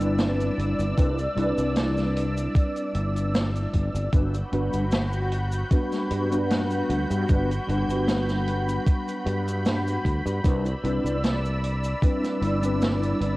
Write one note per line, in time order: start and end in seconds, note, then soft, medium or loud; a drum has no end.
0.00 0.49 G1 medium
0.00 0.92 G3 loud
0.00 0.93 C4 medium
0.00 0.93 D4 medium
0.00 0.94 E4 medium
0.00 0.94 B4 loud
0.00 4.09 D5 medium
0.00 0.94 B5 medium
0.00 4.09 E6 loud
0.00 closed hi-hat medium
0.00 cabasa medium
0.19 snare loud
0.19 closed hi-hat medium
0.19 cabasa medium
0.40 closed hi-hat medium
0.40 cabasa soft
0.58 0.73 G1 medium
0.58 closed hi-hat medium
0.79 0.92 G1 loud
0.79 closed hi-hat medium
0.79 cabasa medium
0.97 1.26 C2 loud
0.97 1.17 G3 loud
0.97 1.17 C4 medium
0.97 1.17 D4 medium
0.97 1.18 E4 medium
0.97 1.18 B4 loud
0.97 kick loud
0.97 closed hi-hat medium
0.97 cabasa medium
1.19 closed hi-hat soft
1.19 cabasa soft
1.35 1.52 C2 loud
1.35 4.08 G3 medium
1.35 4.08 C4 medium
1.35 4.09 D4 medium
1.35 4.09 E4 medium
1.35 4.09 B4 loud
1.35 closed hi-hat medium
1.58 2.47 C2 loud
1.58 closed hi-hat medium
1.58 cabasa medium
1.76 snare loud
1.76 closed hi-hat loud
1.76 cabasa medium
1.97 snare soft
1.97 cabasa soft
2.17 closed hi-hat loud
2.37 closed hi-hat medium
2.37 cabasa medium
2.55 kick loud
2.55 closed hi-hat medium
2.55 cabasa medium
2.76 closed hi-hat medium
2.76 cabasa soft
2.95 3.65 G1 medium
2.95 closed hi-hat medium
3.16 closed hi-hat medium
3.16 cabasa medium
3.35 snare loud
3.35 closed hi-hat medium
3.35 cabasa medium
3.55 closed hi-hat medium
3.55 cabasa soft
3.74 3.88 G1 medium
3.74 kick medium
3.74 closed hi-hat medium
3.95 4.08 G1 loud
3.95 closed hi-hat medium
3.95 cabasa medium
4.13 4.41 G1 loud
4.13 4.33 G3 medium
4.13 4.33 B3 medium
4.13 4.33 D4 medium
4.13 10.41 F#4 medium
4.13 4.33 F#4 medium
4.13 4.33 B4 loud
4.13 13.37 B5 medium
4.13 10.41 G6 loud
4.13 kick loud
4.13 closed hi-hat medium
4.13 cabasa medium
4.35 closed hi-hat medium
4.35 cabasa soft
4.52 4.67 G1 loud
4.52 4.83 G3 medium
4.52 4.83 B3 medium
4.52 4.83 D4 medium
4.52 4.83 F#4 medium
4.52 4.84 B4 loud
4.52 closed hi-hat medium
4.73 5.62 G1 loud
4.73 closed hi-hat medium
4.73 cabasa medium
4.91 snare loud
4.91 closed hi-hat medium
4.91 cabasa medium
5.13 cabasa soft
5.32 closed hi-hat medium
5.52 closed hi-hat medium
5.52 cabasa medium
5.70 6.26 G3 medium
5.70 6.26 B3 medium
5.70 6.26 D4 medium
5.70 6.27 F#4 medium
5.70 6.27 B4 loud
5.70 kick loud
5.70 closed hi-hat medium
5.70 cabasa medium
5.92 snare soft
5.92 closed hi-hat medium
5.92 cabasa soft
6.10 6.81 G2 medium
6.10 closed hi-hat loud
6.30 7.24 G3 medium
6.30 7.24 B3 medium
6.30 7.25 D4 medium
6.30 7.25 F#4 medium
6.30 7.25 B4 loud
6.30 closed hi-hat medium
6.30 cabasa medium
6.50 snare loud
6.50 closed hi-hat medium
6.50 cabasa medium
6.70 closed hi-hat medium
6.70 cabasa soft
6.89 7.04 D2 medium
6.89 closed hi-hat medium
7.10 7.23 G2 loud
7.10 closed hi-hat medium
7.10 cabasa medium
7.28 7.57 G1 loud
7.28 7.48 G3 loud
7.28 7.49 B3 medium
7.28 7.49 D4 medium
7.28 7.49 F#4 medium
7.28 7.49 B4 loud
7.28 kick loud
7.28 closed hi-hat medium
7.28 cabasa medium
7.51 closed hi-hat medium
7.51 cabasa soft
7.67 7.83 G1 loud
7.67 10.39 G3 medium
7.67 10.40 B3 medium
7.67 10.40 D4 medium
7.67 10.41 F#4 medium
7.67 10.41 B4 loud
7.67 closed hi-hat medium
7.89 8.78 G1 loud
7.89 closed hi-hat medium
7.89 cabasa medium
8.08 snare loud
8.08 closed hi-hat medium
8.08 cabasa medium
8.29 snare soft
8.29 cabasa soft
8.48 closed hi-hat medium
8.69 closed hi-hat medium
8.69 cabasa medium
8.87 kick loud
8.87 closed hi-hat medium
8.87 cabasa medium
9.08 closed hi-hat medium
9.08 cabasa soft
9.26 9.96 G2 medium
9.26 closed hi-hat medium
9.48 closed hi-hat medium
9.48 cabasa medium
9.65 snare loud
9.65 closed hi-hat medium
9.65 cabasa medium
9.87 closed hi-hat medium
9.87 cabasa soft
10.05 10.20 D2 medium
10.05 kick medium
10.05 closed hi-hat medium
10.26 10.39 G2 loud
10.26 closed hi-hat medium
10.26 cabasa medium
10.44 10.73 C2 loud
10.44 10.64 G3 medium
10.44 10.64 C4 medium
10.44 10.65 D4 medium
10.44 10.65 E4 medium
10.44 10.65 B4 loud
10.44 13.37 D5 medium
10.44 13.37 E6 loud
10.44 kick loud
10.44 closed hi-hat medium
10.44 cabasa medium
10.66 closed hi-hat medium
10.66 cabasa soft
10.84 10.99 C2 loud
10.84 11.14 G3 medium
10.84 11.15 C4 medium
10.84 11.15 D4 medium
10.84 11.15 E4 medium
10.84 11.15 B4 medium
10.84 closed hi-hat medium
11.04 11.93 C2 loud
11.04 closed hi-hat medium
11.04 cabasa medium
11.24 snare loud
11.24 closed hi-hat medium
11.24 cabasa medium
11.45 cabasa soft
11.64 closed hi-hat medium
11.84 closed hi-hat medium
11.84 cabasa medium
12.02 12.58 G3 medium
12.02 12.58 C4 medium
12.02 12.58 D4 medium
12.02 12.58 E4 medium
12.02 12.59 B4 loud
12.02 kick loud
12.02 closed hi-hat medium
12.02 cabasa medium
12.24 snare soft
12.24 closed hi-hat medium
12.24 cabasa soft
12.42 13.12 G1 medium
12.42 closed hi-hat medium
12.62 13.37 G3 medium
12.62 13.37 C4 medium
12.62 13.37 D4 medium
12.62 13.37 E4 medium
12.62 13.37 B4 loud
12.62 closed hi-hat medium
12.62 cabasa medium
12.82 snare loud
12.82 closed hi-hat medium
12.82 cabasa medium
13.03 closed hi-hat medium
13.03 cabasa soft
13.21 13.36 G1 medium
13.21 closed hi-hat medium